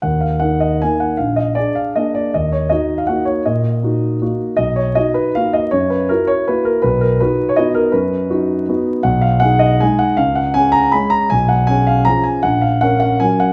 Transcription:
\new Staff \with { instrumentName = "Grand piano" } { \time 3/4 \key ees \minor \tempo 4 = 159 << { ges''8 f''8 ges''8 ees''8 aes''8 ges''8 | f''8 ees''8 d''8 f''8 ees''8 d''8 | ees''8 des''8 ees''8. f''16 ges''8 des''8 | ees''2~ ees''8 r8 |
dis''8 des''8 dis''8 b'8 f''8 dis''8 | des''8 ces''8 bes'8 des''8 ces''8 bes'8 | b'8 bes'8 b'8. des''16 dis''8 bes'8 | b'2~ b'8 r8 |
\key cis \mixolydian fis''8 eis''8 fis''8 dis''8 gis''8 fis''8 | eis''8 fis''8 gis''8 ais''8 b''8 ais''8 | gis''8 fis''8 gis''8 eis''8 ais''8 gis''8 | fis''8 eis''8 fis''8 fis''8 gis''8 fis''8 | } \\ { ees,4 <ees' bes'>4 <bes ees' bes'>4 | bes,,4 <d' aes'>4 <bes d' aes'>4 | ees,4 <ees' ges'>4 <bes ees' ges'>4 | bes,4 <ees' ges'>4 <bes ees' ges'>4 |
b,,4 <dis' fis'>4 <ais dis' fis'>4 | ges,4 <fes' ges'>4 <bes fes' ges'>4 | b,,4 <dis' fis'>4 <b dis' fis'>4 | fis,4 <dis' fis'>4 <b dis' fis'>4 |
b,,4 <dis' gis'>4 <gis dis' gis'>4 | cis,4 <cis' gis'>4 <gis cis' gis'>4 | b,,4 <cis' gis'>4 <eis cis' gis'>4 | ais,,4 <cis' ais'>4 <fis cis' ais'>4 | } >> }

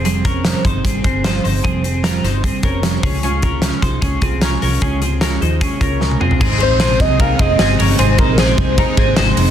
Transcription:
<<
  \new Staff \with { instrumentName = "Soft synth lead" } { \time 4/4 \key aes \major \tempo 4 = 151 r1 | r1 | r1 | r1 |
r8 c''4 ees''8 f''8 ees''4 r8 | c''8 bes'8 c''2~ c''8 r8 | }
  \new Staff \with { instrumentName = "Clean electric guitar" } { \time 4/4 \key aes \major <c' aes'>8 <des' bes'>4 <ees' c''>8 <c' aes'>8 <c' aes'>8 <f' c''>8 <ees' c''>8 | <c' aes'>8 <c' aes'>8 <f' bes'>8 <ees' c''>8 <c' aes'>8 <des' bes'>4 <des' aes'>8 | <des' aes'>8 <des' bes'>4 <ees' c''>8 <des' aes'>8 <c' aes'>8 <des' bes'>8 <des' bes'>8 | <des' aes'>8 <c' aes'>8 <des' bes'>8 <ees' c''>8 <des' aes'>8 <des' bes'>4 <c' aes'>8 |
<c' aes'>8 <ees' c''>8 <c' aes'>4 <ees' bes'>8 <c' aes'>8 <c' aes'>8 <des' bes'>8 | <c' aes'>8 <ees' c''>8 <c' aes'>4 <ees' bes'>8 <c' aes'>8 <ees' c''>4 | }
  \new Staff \with { instrumentName = "Steel-string acoustic guitar" } { \time 4/4 \key aes \major <f g c' aes' c''>8 <c' aes' c''>8 <f g c' aes' c''>8 <c' aes' c''>8 <g c' aes' c''>8 <c' aes' c''>8 <f g c' aes' c''>8 <c' aes' c''>8 | <f g c' aes' c''>8 <c' aes' c''>8 <f g c' aes' c''>8 <c' aes' c''>8 <g c' aes' c''>8 <c' aes' c''>8 <f g c' aes' c''>8 <des' f' aes'>8 | <des aes des' f' aes'>8 <f' aes'>8 <des aes des' f' aes'>8 <f' aes'>8 <aes des' f' aes'>8 <des' f' aes'>8 <des aes des' f' aes'>8 <des' f' aes'>8 | <des aes des' f' aes'>8 <des' f' aes'>8 <des aes des' f' aes'>8 <des' f' aes'>8 <aes des' f' aes'>8 <des' f' aes'>8 <des aes des' f' aes'>8 <des' f' aes'>8 |
<aes c' ees' aes'>8 <c' ees' aes'>8 <aes c' ees' aes'>8 <c' ees' aes'>8 <aes c' ees' aes'>8 <c' aes'>8 <aes c' ees' aes'>8 <c' ees' aes'>8 | <aes c' ees' aes'>8 <c' ees' aes'>8 <aes c' ees' aes'>8 <c' aes'>8 <aes c' ees' aes'>8 <c' ees' aes'>8 <aes c' ees' aes'>8 <c' ees' aes'>8 | }
  \new Staff \with { instrumentName = "String machine" } { \clef bass \time 4/4 \key aes \major r1 | r1 | r1 | r1 |
<c aes ees'>1~ | <c aes ees'>1 | }
  \new Staff \with { instrumentName = "Fingered electric bass" } { \clef bass \time 4/4 \key aes \major f,,4. g,,8 aes,,8 g,,4 g,,8 | f,,4. g,,8. r16 f,,4 des,8~ | des,4. c,8 des,8 c,4 c,8 | des,4. ees,8. r16 des,4 r8 |
aes,,8. bes,,8. c,4 f,,8 g,,8 g,,8 | aes,,8. bes,,8. c,8. r16 aes,,8 aes,,8 f,,8 | }
  \new DrumStaff \with { instrumentName = "Drums" } \drummode { \time 4/4 hh8 <hh bd>8 <hh sn>8 <hh bd>8 <hh bd>8 <hh bd>8 <hh sn>8 hho8 | <hh bd>8 hh8 <hh sn>8 <hh sn>8 <hh bd>8 <hh bd>8 <hh sn>8 <hho bd>8 | hh8 <hh bd>8 <hh sn>8 <hh bd sn>8 <hh bd>8 <hh bd>8 <hh sn>8 hho8 | <hh bd>8 hh8 <hh sn>8 hh8 <hh bd>8 <hh bd>8 sn16 tommh16 toml16 tomfh16 |
<cymc bd>8 cymr8 <cymr sn>8 <bd cymr sn>8 <bd cymr>8 <bd cymr>8 <cymr sn>8 <hho cymr>8 | <hhp cymr>8 <bd cymr>8 <cymr sn>8 <bd cymr>8 <bd cymr>8 <bd cymr>8 <cymr sn>8 <hho cymr>8 | }
>>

